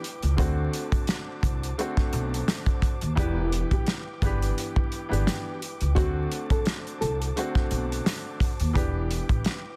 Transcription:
0.00 0.36 E4 medium
0.00 0.36 B4 medium
0.00 0.36 G5 medium
0.00 3.13 D6 medium
0.04 closed hi-hat medium
0.22 0.35 C#2 loud
0.22 closed hi-hat medium
0.37 0.66 D2 loud
0.37 1.67 D3 medium
0.37 1.67 A3 medium
0.37 1.68 C4 medium
0.37 3.14 F#4 medium
0.37 1.68 F#4 loud
0.37 3.14 C5 medium
0.37 3.14 A5 medium
0.37 kick loud
0.37 closed hi-hat medium
0.73 closed hi-hat medium
0.92 kick loud
0.92 closed hi-hat soft
1.07 snare loud
1.07 closed hi-hat medium
1.43 1.71 C2 loud
1.43 kick loud
1.43 closed hi-hat medium
1.63 closed hi-hat medium
1.78 2.91 D3 medium
1.78 2.91 A3 medium
1.78 2.92 C4 medium
1.78 2.92 F#4 loud
1.78 closed hi-hat loud
1.97 kick loud
1.97 snare soft
1.97 closed hi-hat soft
2.13 2.41 B1 loud
2.13 closed hi-hat medium
2.34 closed hi-hat medium
2.48 snare loud
2.48 closed hi-hat loud
2.66 kick medium
2.66 closed hi-hat soft
2.82 kick loud
2.82 closed hi-hat medium
3.01 3.14 D#2 medium
3.01 closed hi-hat medium
3.15 3.61 E1 loud
3.15 3.98 E3 medium
3.15 3.98 B3 medium
3.15 3.99 D4 medium
3.15 3.68 E4 loud
3.15 5.94 E4 medium
3.15 3.99 G4 loud
3.15 5.94 B4 medium
3.15 5.94 G5 medium
3.15 9.76 D6 medium
3.15 kick loud
3.15 closed hi-hat medium
3.52 closed hi-hat medium
3.71 3.84 A1 medium
3.71 3.86 G4 medium
3.71 kick loud
3.71 closed hi-hat soft
3.86 snare loud
3.86 closed hi-hat medium
4.22 4.50 G1 medium
4.22 5.04 E3 medium
4.22 5.04 B3 medium
4.22 5.04 D4 medium
4.22 5.05 G4 loud
4.22 4.40 B4 medium
4.22 kick loud
4.22 closed hi-hat medium
4.42 closed hi-hat medium
4.58 closed hi-hat loud
4.76 kick loud
4.92 closed hi-hat medium
5.09 5.24 G1 medium
5.09 5.57 E3 medium
5.09 5.57 B3 medium
5.09 5.57 D4 medium
5.09 5.58 G4 loud
5.13 closed hi-hat medium
5.26 5.58 G4 medium
5.26 snare loud
5.26 closed hi-hat loud
5.62 closed hi-hat medium
5.81 5.94 C#2 loud
5.81 closed hi-hat medium
5.95 6.24 D2 loud
5.95 7.25 D3 medium
5.95 7.26 A3 medium
5.95 7.26 C4 medium
5.95 6.47 F#4 loud
5.95 8.73 F#4 medium
5.95 7.27 F#4 loud
5.95 8.73 C5 medium
5.95 8.73 A5 medium
5.95 kick loud
5.95 closed hi-hat medium
6.32 closed hi-hat medium
6.50 6.65 A4 medium
6.50 kick loud
6.50 closed hi-hat soft
6.65 snare loud
6.65 closed hi-hat medium
6.87 closed hi-hat soft
7.01 7.29 C2 loud
7.01 7.18 A4 loud
7.01 closed hi-hat medium
7.22 closed hi-hat medium
7.36 8.49 D3 medium
7.36 8.50 A3 medium
7.36 8.50 C4 medium
7.36 8.50 F#4 loud
7.36 closed hi-hat loud
7.55 kick loud
7.55 snare soft
7.71 7.99 B1 loud
7.71 closed hi-hat medium
7.92 closed hi-hat medium
8.06 snare loud
8.06 closed hi-hat loud
8.40 kick medium
8.40 closed hi-hat medium
8.60 8.72 D#2 medium
8.60 closed hi-hat soft
8.73 9.19 E1 loud
8.73 9.56 E3 medium
8.73 9.56 B3 medium
8.73 9.57 D4 medium
8.73 9.76 E4 medium
8.73 9.57 G4 loud
8.73 kick loud
8.73 closed hi-hat medium
9.11 closed hi-hat medium
9.29 9.42 A1 medium
9.29 kick loud
9.29 closed hi-hat soft
9.45 snare loud
9.45 closed hi-hat medium

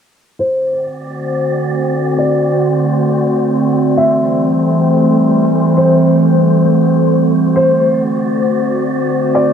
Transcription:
0.39 3.94 D3 medium
0.39 9.53 A3 medium
0.39 9.53 C4 medium
0.39 3.94 C4 medium
0.39 3.94 F#4 medium
0.39 0.81 C5 loud
0.39 2.17 C5 medium
0.39 2.17 D5 medium
2.18 7.51 C5 medium
2.18 2.60 D5 loud
2.18 3.96 D5 medium
3.97 7.52 E3 medium
3.97 7.52 G3 medium
3.97 7.52 A3 medium
3.97 5.75 G4 medium
3.97 9.53 C5 medium
3.97 4.40 E5 loud
5.77 9.53 F#4 medium
5.77 6.19 C5 loud
7.55 9.53 D3 medium
7.55 9.53 C4 medium
7.55 9.53 F#4 medium
7.55 7.98 C5 loud
7.55 9.33 D5 medium
9.34 9.53 C5 medium
9.34 9.53 D5 medium

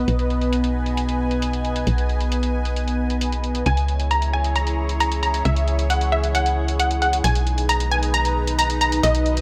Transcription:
0.00 3.62 B3 medium
0.00 3.62 B4 medium
0.00 3.62 D#5 medium
0.08 1.85 B1 medium
0.08 3.63 G#5 medium
0.08 closed hi-hat medium
0.19 closed hi-hat soft
0.30 closed hi-hat soft
0.41 closed hi-hat soft
0.53 closed hi-hat medium
0.64 closed hi-hat soft
0.86 closed hi-hat soft
0.97 closed hi-hat medium
1.09 closed hi-hat soft
1.31 closed hi-hat soft
1.42 closed hi-hat medium
1.53 closed hi-hat soft
1.65 closed hi-hat soft
1.76 closed hi-hat medium
1.87 3.64 B1 medium
1.87 closed hi-hat medium
1.98 closed hi-hat soft
2.09 closed hi-hat soft
2.21 closed hi-hat soft
2.32 closed hi-hat medium
2.43 closed hi-hat soft
2.65 closed hi-hat soft
2.76 closed hi-hat medium
2.88 closed hi-hat soft
3.10 closed hi-hat soft
3.21 closed hi-hat medium
3.32 closed hi-hat soft
3.44 closed hi-hat soft
3.55 closed hi-hat medium
3.66 5.43 C#2 medium
3.66 7.21 E4 medium
3.66 8.99 G#4 medium
3.66 7.21 C#5 medium
3.66 4.05 G#5 loud
3.66 closed hi-hat medium
3.77 closed hi-hat soft
3.88 closed hi-hat soft
4.00 closed hi-hat soft
4.11 4.30 A#5 medium
4.11 closed hi-hat medium
4.22 closed hi-hat soft
4.33 4.53 G#5 medium
4.44 closed hi-hat soft
4.56 4.94 A#5 medium
4.56 closed hi-hat medium
4.67 closed hi-hat soft
4.89 closed hi-hat soft
5.00 5.20 A#5 medium
5.00 closed hi-hat medium
5.12 closed hi-hat soft
5.23 5.42 A#5 medium
5.23 closed hi-hat soft
5.34 closed hi-hat medium
5.45 7.22 C#2 medium
5.45 5.84 E5 loud
5.45 5.84 E5 medium
5.45 closed hi-hat medium
5.56 closed hi-hat soft
5.68 closed hi-hat soft
5.79 closed hi-hat medium
5.90 6.09 F#5 medium
5.90 closed hi-hat medium
6.01 closed hi-hat soft
6.12 6.32 E5 medium
6.24 closed hi-hat soft
6.35 6.73 F#5 medium
6.35 closed hi-hat medium
6.46 closed hi-hat soft
6.68 closed hi-hat soft
6.80 6.99 F#5 medium
6.80 closed hi-hat medium
6.91 closed hi-hat soft
7.02 7.21 F#5 medium
7.02 closed hi-hat soft
7.13 closed hi-hat medium
7.24 9.01 B1 medium
7.24 9.41 D#4 medium
7.24 9.41 B4 medium
7.24 7.63 G#5 loud
7.24 closed hi-hat medium
7.35 closed hi-hat soft
7.47 closed hi-hat soft
7.58 closed hi-hat medium
7.69 7.88 A#5 medium
7.69 7.89 A#5 medium
7.69 closed hi-hat medium
7.80 closed hi-hat medium
7.92 8.11 G#5 medium
8.03 closed hi-hat medium
8.14 8.52 A#5 medium
8.14 closed hi-hat medium
8.25 closed hi-hat medium
8.47 closed hi-hat medium
8.59 8.78 A#5 medium
8.59 closed hi-hat medium
8.70 closed hi-hat medium
8.81 9.00 A#5 medium
8.81 closed hi-hat soft
8.92 closed hi-hat medium
9.03 9.41 B1 medium
9.03 9.41 F#4 medium
9.03 9.41 D#5 loud
9.03 9.41 D#5 medium
9.03 closed hi-hat medium
9.15 closed hi-hat medium
9.26 closed hi-hat soft
9.37 closed hi-hat medium

